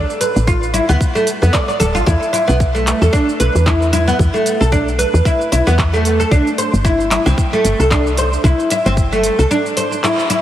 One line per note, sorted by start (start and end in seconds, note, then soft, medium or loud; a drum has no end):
0.10 shaker soft
0.21 0.46 B4 medium
0.21 open hi-hat medium
0.21 shaker medium
0.36 0.80 A1 loud
0.36 shaker soft
0.47 0.73 F4 loud
0.47 kick loud
0.47 shaker soft
0.63 shaker soft
0.74 0.82 E4 loud
0.74 open hi-hat medium
0.74 shaker medium
0.89 0.96 D2 medium
0.89 0.96 B3 loud
0.89 shaker soft
1.01 kick loud
1.01 shaker soft
1.15 1.26 A3 medium
1.15 shaker soft
1.27 open hi-hat medium
1.27 shaker medium
1.42 1.50 F2 loud
1.42 1.53 B3 medium
1.42 shaker soft
1.53 1.67 D5 loud
1.53 kick loud
1.53 clap medium
1.53 shaker soft
1.68 1.79 D5 medium
1.68 shaker soft
1.80 1.97 D1 medium
1.80 1.94 A4 loud
1.80 open hi-hat medium
1.80 shaker medium
1.95 2.03 A1 medium
1.95 2.06 F4 loud
1.95 shaker soft
2.06 2.16 E2 loud
2.06 2.32 E4 loud
2.06 kick loud
2.06 shaker soft
2.23 shaker soft
2.33 2.42 E4 loud
2.33 open hi-hat medium
2.33 shaker medium
2.48 2.93 B1 loud
2.48 2.55 B3 medium
2.48 shaker soft
2.60 kick loud
2.60 shaker soft
2.75 3.00 A3 medium
2.75 shaker soft
2.87 clap medium
2.87 open hi-hat medium
2.87 shaker medium
3.02 3.09 E2 loud
3.02 3.13 A4 medium
3.02 shaker soft
3.13 3.27 D4 loud
3.13 kick loud
3.13 shaker soft
3.29 shaker soft
3.40 3.49 B1 medium
3.40 3.65 B4 medium
3.40 open hi-hat medium
3.40 shaker medium
3.55 4.12 E2 medium
3.55 shaker soft
3.66 3.92 E4 medium
3.66 kick loud
3.66 clap medium
3.66 shaker soft
3.82 shaker soft
3.93 4.01 E4 loud
3.93 open hi-hat medium
3.93 shaker medium
4.08 4.14 B3 loud
4.08 shaker soft
4.19 4.29 E2 loud
4.19 kick loud
4.19 shaker soft
4.34 4.59 A3 medium
4.34 shaker soft
4.46 open hi-hat medium
4.46 shaker medium
4.61 5.05 B1 loud
4.61 4.72 A4 medium
4.61 shaker soft
4.72 4.86 D4 loud
4.72 kick loud
4.72 shaker soft
4.88 shaker soft
4.99 5.24 B4 medium
4.99 open hi-hat medium
4.99 shaker medium
5.14 5.21 E2 loud
5.14 shaker soft
5.25 5.51 E4 loud
5.25 kick loud
5.25 shaker soft
5.41 shaker soft
5.52 5.61 B1 medium
5.52 5.61 E4 loud
5.52 open hi-hat medium
5.52 shaker medium
5.67 6.25 E2 medium
5.67 5.74 B3 loud
5.67 shaker soft
5.78 kick loud
5.78 clap medium
5.78 shaker soft
5.94 6.19 A3 medium
5.94 shaker soft
6.05 open hi-hat medium
6.05 shaker medium
6.20 6.31 A4 medium
6.20 shaker soft
6.31 6.41 C2 medium
6.31 6.46 D4 loud
6.31 kick loud
6.31 shaker soft
6.47 shaker soft
6.58 6.84 C5 medium
6.58 open hi-hat loud
6.58 shaker medium
6.73 7.17 G1 medium
6.73 shaker soft
6.85 7.10 E4 loud
6.85 kick loud
6.85 shaker soft
7.00 shaker soft
7.11 7.20 E4 loud
7.11 clap medium
7.11 open hi-hat loud
7.11 shaker medium
7.26 7.33 C2 loud
7.26 7.33 C4 loud
7.26 shaker soft
7.38 kick loud
7.38 shaker soft
7.53 7.78 A3 medium
7.53 shaker soft
7.65 7.74 G1 medium
7.65 open hi-hat medium
7.65 shaker medium
7.80 8.37 C2 medium
7.80 7.91 A4 medium
7.80 shaker soft
7.91 8.06 D4 loud
7.91 kick loud
7.91 clap medium
7.91 shaker soft
8.07 shaker soft
8.17 8.43 C5 medium
8.17 open hi-hat loud
8.17 shaker medium
8.33 shaker soft
8.44 8.53 C2 loud
8.44 8.70 E4 loud
8.44 kick loud
8.44 shaker soft
8.60 shaker soft
8.70 8.80 E4 loud
8.70 open hi-hat loud
8.70 shaker medium
8.86 9.30 G1 loud
8.86 8.92 C4 loud
8.86 shaker soft
8.97 kick loud
8.97 shaker soft
9.12 9.37 A3 medium
9.12 shaker soft
9.24 open hi-hat medium
9.24 shaker medium
9.39 9.46 C2 medium
9.39 9.50 A4 medium
9.39 shaker soft
9.51 9.65 D4 loud
9.51 shaker soft
9.66 shaker soft
9.77 10.02 C5 medium
9.77 open hi-hat medium
9.77 shaker medium
9.92 shaker soft
10.04 10.29 E4 loud
10.04 clap medium
10.04 shaker soft
10.19 shaker soft
10.30 10.39 E4 loud
10.30 open hi-hat loud
10.30 shaker medium